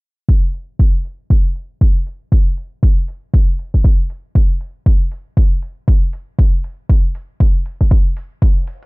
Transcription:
0.29 kick
0.54 open hi-hat
0.79 kick
1.05 open hi-hat
1.30 kick
1.56 open hi-hat
1.81 kick
2.07 open hi-hat
2.32 kick
2.57 open hi-hat
2.83 kick
3.08 open hi-hat
3.34 kick
3.59 open hi-hat
3.74 kick
3.84 kick
4.10 open hi-hat
4.35 kick
4.61 open hi-hat
4.86 kick
5.12 open hi-hat
5.37 kick
5.62 open hi-hat
5.88 kick
6.13 open hi-hat
6.39 kick
6.64 open hi-hat
6.89 kick
7.15 open hi-hat
7.40 kick
7.66 open hi-hat
7.81 kick
7.91 kick
8.17 open hi-hat
8.42 kick, closed hi-hat
8.56 closed hi-hat
8.67 closed hi-hat, open hi-hat
8.83 closed hi-hat

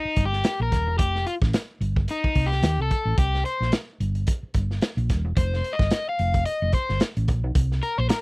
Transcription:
Already playing: D#4
0.05 muted fingered electric bass stroke
0.16 G1, kick, closed hi-hat
0.26 G4
0.33 snare
0.44 snare, closed hi-hat
0.60 A#1 A#4
0.72 D#1, kick, snare, closed hi-hat
0.87 E1
0.98 F1 G4, kick, closed hi-hat
1.16 snare
1.27 F4, closed hi-hat
1.42 A1, kick, snare
1.53 snare, closed hi-hat
1.80 G1, closed hi-hat
1.96 kick
2.08 D#4, closed hi-hat
2.24 muted fingered electric bass stroke, kick
2.35 C2, kick, open hi-hat
2.46 G4
2.52 snare
2.63 D#2, snare, closed hi-hat
2.78 C2 A4
2.91 kick, closed hi-hat
3.05 A1
3.18 C2 G4, kick, closed hi-hat
3.35 snare
3.45 C5, closed hi-hat
3.60 A#1, snare
3.72 snare, closed hi-hat
4.00 G1, closed hi-hat
4.15 closed hi-hat
4.27 kick, closed hi-hat
4.43 muted fingered electric bass stroke
4.54 G1, kick, closed hi-hat
4.71 snare
4.82 snare, closed hi-hat
4.97 A#1, closed hi-hat
5.10 D#1, kick, snare, closed hi-hat
5.25 E1
5.37 F1 C5, kick, closed hi-hat
5.54 snare
5.64 closed hi-hat
5.73 D#5
5.79 G1, kick, snare
5.91 snare, closed hi-hat
6.09 F5
6.19 F1, closed hi-hat
6.34 kick, closed hi-hat
6.46 D#5, closed hi-hat
6.62 F1
6.73 C5, kick, closed hi-hat
6.89 G1, snare
7.00 snare, closed hi-hat
7.17 A1, closed hi-hat
7.28 A#1, kick, closed hi-hat
7.44 B1
7.55 C2, kick, closed hi-hat
7.72 snare
7.83 A#4, closed hi-hat
7.98 A#1 C5
8.09 A#4, snare, closed hi-hat

